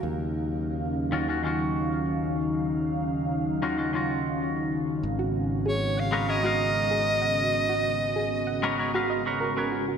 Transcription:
<<
  \new Staff \with { instrumentName = "Soprano saxophone" } { \time 4/4 \key dis \minor \tempo 4 = 96 r1 | r1 | r4 cis''8 eis''8 dis''2~ | dis''2. r4 | }
  \new Staff \with { instrumentName = "Synth arpeggio sound" } { \time 4/4 \key dis \minor r1 | r1 | r16 fis'16 r8 gis'16 r16 fis''16 r8 fis'16 r8 gis'16 r16 fis''16 r16 | r16 fis'16 r8 gis'16 r16 fis''16 r8 fis'16 dis''16 r16 ais'16 ais'16 fis'16 fis'16 | }
  \new Staff \with { instrumentName = "Clean electric guitar" } { \time 4/4 \key dis \minor r4. r16 <dis cis' eis' fis'>16 <dis cis' eis' fis'>16 <dis cis' eis' fis'>4.~ <dis cis' eis' fis'>16~ | <dis cis' eis' fis'>4.~ <dis cis' eis' fis'>16 <dis cis' eis' fis'>16 <dis cis' eis' fis'>16 <dis cis' eis' fis'>4.~ <dis cis' eis' fis'>16 | r4. r16 <gis fis' ais' b' cis''>16 <gis fis' ais' b' cis''>16 <gis fis' ais' b' eis''>4.~ <gis fis' ais' b' eis''>16~ | <gis fis' ais' b' eis''>4.~ <gis fis' ais' b' eis''>16 <gis fis' ais' b' cis''>16 <gis fis' ais' b' cis''>16 <gis fis' ais' b' eis''>8 <gis fis' ais' b' cis''>8 <gis fis' ais' b' cis''>8 r16 | }
  \new Staff \with { instrumentName = "Analog synth pad" } { \time 4/4 \key dis \minor << { <fis dis' eis''>1~ | <fis dis' eis''>1 | <gis b fis'>1~ | <gis b fis'>1 | } \\ { <cis cis'>1~ | <cis cis'>1~ | <cis cis'>1~ | <cis cis'>1 | } >> }
  \new Staff \with { instrumentName = "Fingered electric bass" } { \clef bass \time 4/4 \key dis \minor dis,1~ | dis,1 | gis,,1~ | gis,,1 | }
>>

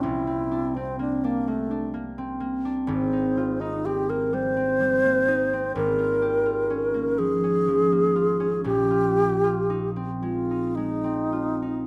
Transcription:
<<
  \new Staff \with { instrumentName = "Alto flute" } { \time 6/8 \key bes \dorian \tempo 4. = 41 fes'8. c'16 d'16 bes16 a8 r4 | c'8. ees'16 g'16 bes'16 c''4. | bes'4. aes'4. | g'4~ g'16 r16 f'8 ees'4 | }
  \new Staff \with { instrumentName = "Harp" } { \time 6/8 \key bes \dorian <c, c bes c'>16 c'16 d'16 c'16 bes16 d'16 bes16 d'16 bes16 c'16 bes16 d'16 | <aes,, aes,>16 ees'16 f'16 ees'16 c'16 bes16 g16 c'16 g16 bes16 ees'16 c'16 | <aes,, aes,>16 f'16 g'16 f'16 des'16 bes16 f16 des'16 f16 bes16 f'16 des'16 | <bes,, bes,>16 f'16 g'16 f'16 ees'16 c'16 aes16 ees'16 aes16 c'16 f'16 ees'16 | }
>>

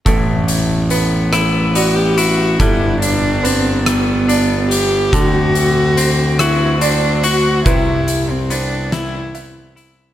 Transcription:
<<
  \new Staff \with { instrumentName = "Felt piano" } { \time 6/8 \key a \dorian \tempo 4. = 47 a'4 b'4 d''4 | a'4 b'4 d''4 | a'4 c''4 d''4 | b'4 c''4 e''4 | }
  \new Staff \with { instrumentName = "Cello" } { \time 6/8 \key a \dorian r2 fis'16 g'16 fis'8 | e'8 d'8 c'8 b4 g'8 | fis'4. e'8 d'8 fis'8 | e'8. c'16 d'8 e'4 r8 | }
  \new Staff \with { instrumentName = "Clean electric guitar" } { \time 6/8 \key a \dorian a,4 b8 e'8 b8 e'8 | g4 d'4 d'4 | d4 c'8 fis'8 c'8 fis'8 | c4 b8 e'8 b8 e'8 | }
  \new Staff \with { instrumentName = "Pedal steel guitar" } { \time 6/8 \key a \dorian <a b e'>2. | <g d' b' fis''>2. | <d a c'>2. | <c g e'>2. | }
  \new Staff \with { instrumentName = "Picked electric bass" } { \clef bass \time 6/8 \key a \dorian a,,2. | g,,2. | d,2. | c,2. | }
  \new DrumStaff \with { instrumentName = "Drums" } \drummode { \time 6/8 <hh bd>8 hh8 hh8 <hh ss>8 hh8 hh8 | <hh bd>8 hh8 hh8 <hh ss>8 hh8 hh8 | <hh bd>8 hh8 hh8 <hh ss>8 hh8 hh8 | <hh bd>8 hh8 hh8 <hh sn>8 hh8 hh8 | }
>>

